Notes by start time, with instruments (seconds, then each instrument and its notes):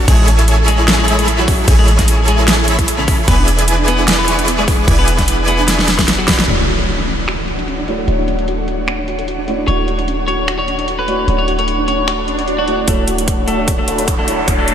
0.08 808-style bass A1, clean electric guitar G#3 G#4, supersaw synth E4 G#4 A4 C#5 G#5, synth arpeggio sound G#4, kick, closed hi-hat, crash
0.19 synth arpeggio sound E4
0.28 synth arpeggio sound C#4, closed hi-hat
0.39 synth arpeggio sound E4, closed hi-hat
0.48 synth arpeggio sound G#4, closed hi-hat
0.59 synth arpeggio sound A4
0.68 clean electric guitar G#3 G#4, synth arpeggio sound G#4, closed hi-hat
0.79 synth arpeggio sound E4
0.88 synth arpeggio sound C#4, snare, closed hi-hat
0.98 clean electric guitar G#3 G#4, synth arpeggio sound E4
1.08 supersaw synth E4 G#4 A4 C#5 B5, synth arpeggio sound G#4, closed hi-hat
1.19 synth arpeggio sound A4, closed hi-hat
1.28 synth arpeggio sound G#4, closed hi-hat
1.39 clean electric guitar F#3 F#4, synth arpeggio sound E4
1.48 synth arpeggio sound C#4, kick, open hi-hat
1.59 synth arpeggio sound E4
1.68 808-style bass A1, supersaw synth E4 G#4 A4 C#5 G#5, synth arpeggio sound G#4, kick, closed hi-hat, crash
1.79 clean electric guitar G#3 G#4, synth arpeggio sound A4
1.88 synth arpeggio sound G#4, closed hi-hat
1.99 clean electric guitar G#3 G#4, synth arpeggio sound E4, kick, snare, closed hi-hat
2.08 synth arpeggio sound C#4, closed hi-hat
2.19 synth arpeggio sound E4
2.28 clean electric guitar G#3 G#4, synth arpeggio sound G#4, closed hi-hat
2.39 synth arpeggio sound A4
2.48 synth arpeggio sound G#4, snare, closed hi-hat
2.58 synth arpeggio sound E4
2.68 synth arpeggio sound C#4, supersaw synth E4 G#4 A4 C#5 B5, closed hi-hat
2.79 synth arpeggio sound E4, kick, closed hi-hat
2.88 synth arpeggio sound G#4, closed hi-hat
2.98 clean electric guitar C#3 C#4, synth arpeggio sound A4
3.08 synth arpeggio sound G#4, kick, open hi-hat
3.19 synth arpeggio sound E4
3.28 808-style bass E1, synth arpeggio sound B3, clean electric guitar B3 B4, supersaw synth E4 G#4 B4 D5 G#5, kick, closed hi-hat, crash
3.39 synth arpeggio sound D4
3.48 synth arpeggio sound E4, closed hi-hat
3.59 synth arpeggio sound G#4, closed hi-hat
3.68 synth arpeggio sound E4, closed hi-hat
3.79 synth arpeggio sound D4
3.88 synth arpeggio sound B3, clean electric guitar B3 B4, closed hi-hat
3.98 synth arpeggio sound D4
4.08 synth arpeggio sound E4, snare, closed hi-hat
4.18 clean electric guitar B3 B4, synth arpeggio sound G#4
4.28 supersaw synth E4 G#4 B4 D5 C#6, synth arpeggio sound E4, closed hi-hat
4.39 synth arpeggio sound D4, closed hi-hat
4.48 synth arpeggio sound B3, closed hi-hat
4.58 clean electric guitar G#3 G#4, synth arpeggio sound D4
4.68 synth arpeggio sound E4, kick, open hi-hat
4.79 synth arpeggio sound G#4
4.88 808-style bass E1, synth arpeggio sound E4, supersaw synth E4 G#4 B4 D5 G#5, kick, closed hi-hat, crash
4.99 clean electric guitar B3 B4, synth arpeggio sound D4
5.08 synth arpeggio sound B3, closed hi-hat
5.19 clean electric guitar B3 B4, synth arpeggio sound D4, kick, snare, closed hi-hat
5.28 synth arpeggio sound E4, closed hi-hat
5.39 synth arpeggio sound G#4
5.48 clean electric guitar B3 B4, synth arpeggio sound E4, closed hi-hat
5.59 synth arpeggio sound D4
5.68 synth arpeggio sound B3, snare, closed hi-hat
5.79 synth arpeggio sound D4, snare
5.88 synth arpeggio sound D4, snare, closed hi-hat
5.99 synth arpeggio sound G#4, kick, snare, closed hi-hat
6.08 synth arpeggio sound B3, snare, closed hi-hat
6.18 clean electric guitar F#3 F#4, synth arpeggio sound G#4
6.28 supersaw synth E4 G#4 B4 D5 B5, synth arpeggio sound D5, kick, snare, open hi-hat
6.39 synth arpeggio sound G#4, snare
6.46 808-style bass D1, felt piano A3 D4 E4 F#4 C#5, synth arpeggio sound C#4, ambient pad D4 C#5 F#5, closed hi-hat, crash, impact
6.58 synth arpeggio sound D4
6.68 synth arpeggio sound F#4, closed hi-hat
6.78 synth arpeggio sound A4, closed hi-hat
6.88 synth arpeggio sound F#4, closed hi-hat
6.98 synth arpeggio sound D4
7.08 synth arpeggio sound C#4, closed hi-hat
7.18 synth arpeggio sound D4
7.28 synth arpeggio sound F#4, finger snap, closed hi-hat
7.38 synth arpeggio sound A4
7.48 synth arpeggio sound F#4, closed hi-hat
7.58 synth arpeggio sound D4, closed hi-hat
7.68 synth arpeggio sound C#4, closed hi-hat
7.78 synth arpeggio sound D4
7.87 felt piano A3 D4 E4 F#4 C#5, synth arpeggio sound F#4, closed hi-hat
7.98 synth arpeggio sound A4
8.06 808-style bass D1, felt piano A3 D4 E4 F#4, synth arpeggio sound F#4, closed hi-hat
8.10 felt piano C#5
8.18 synth arpeggio sound D4
8.27 synth arpeggio sound C#4, closed hi-hat
8.38 synth arpeggio sound D4, closed hi-hat
8.48 synth arpeggio sound F#4, closed hi-hat
8.58 synth arpeggio sound A4
8.68 synth arpeggio sound F#4, closed hi-hat
8.79 synth arpeggio sound D4
8.88 synth arpeggio sound C#4, finger snap, closed hi-hat
8.99 synth arpeggio sound D4
9.08 synth arpeggio sound F#4, closed hi-hat
9.19 synth arpeggio sound A4, closed hi-hat
9.28 synth arpeggio sound F#4, closed hi-hat
9.38 synth arpeggio sound D4
9.47 felt piano A3 D4 E4 F#4 C#5, synth arpeggio sound C#4, closed hi-hat
9.58 synth arpeggio sound D4
9.66 808-style bass D1, felt piano A3 D4 E4 F#4 C#5, synth arpeggio sound F#4, clean electric guitar C#5, closed hi-hat
9.79 synth arpeggio sound A4
9.88 synth arpeggio sound F#4, closed hi-hat
9.99 synth arpeggio sound D4, closed hi-hat
10.08 synth arpeggio sound C#4, closed hi-hat
10.19 synth arpeggio sound D4
10.28 synth arpeggio sound F#4, clean electric guitar C#5, closed hi-hat
10.39 synth arpeggio sound A4
10.48 synth arpeggio sound F#4, finger snap, closed hi-hat
10.59 synth arpeggio sound D4, clean electric guitar C#5
10.68 synth arpeggio sound C#4, closed hi-hat
10.79 synth arpeggio sound D4, closed hi-hat
10.88 synth arpeggio sound F#4, closed hi-hat
10.99 synth arpeggio sound A4, clean electric guitar B4
11.07 felt piano A3 D4 E4 F#4 C#5, synth arpeggio sound F#4, closed hi-hat
11.18 synth arpeggio sound D4
11.26 808-style bass D1, felt piano A3 D4 E4 F#4 C#5, synth arpeggio sound C#4, closed hi-hat
11.38 synth arpeggio sound D4, clean electric guitar C#5
11.48 synth arpeggio sound F#4, closed hi-hat
11.59 synth arpeggio sound A4, clean electric guitar C#5, closed hi-hat
11.68 synth arpeggio sound F#4, closed hi-hat
11.78 synth arpeggio sound D4
11.88 synth arpeggio sound C#4, clean electric guitar C#5, closed hi-hat
11.98 synth arpeggio sound D4
12.08 synth arpeggio sound F#4, finger snap, closed hi-hat, swell
12.19 synth arpeggio sound A4
12.28 synth arpeggio sound C#4, closed hi-hat
12.38 synth arpeggio sound C#5, closed hi-hat
12.48 synth arpeggio sound F#4, closed hi-hat
12.58 clean electric guitar F#4, synth arpeggio sound C#5
12.67 felt piano A3 D4 E4 F#4 C#5, synth arpeggio sound D4, closed hi-hat
12.78 synth arpeggio sound C#4
12.86 808-style bass D1, felt piano A3 D4 E4 F#4, clean electric guitar A3 A4, supersaw synth D4 F#4 A4 C#5 F#5, ambient pad C#5 F#5, kick, closed hi-hat, riser
12.90 felt piano C#5
13.08 closed hi-hat
13.18 closed hi-hat
13.28 kick, closed hi-hat
13.47 clean electric guitar A3 A4, closed hi-hat
13.68 kick, closed hi-hat
13.78 clean electric guitar A3 A4
13.88 supersaw synth D4 F#4 A4 C#5 B5, closed hi-hat
13.98 closed hi-hat
14.08 kick, closed hi-hat
14.19 clean electric guitar A3 A4
14.27 felt piano A3 D4 E4 F#4 C#5, closed hi-hat
14.46 808-style bass D1, felt piano A3 D4 E4 F#4, supersaw synth D4 F#4 C#5 F#5, kick, closed hi-hat
14.50 felt piano C#5
14.58 clean electric guitar A3 A4
14.68 closed hi-hat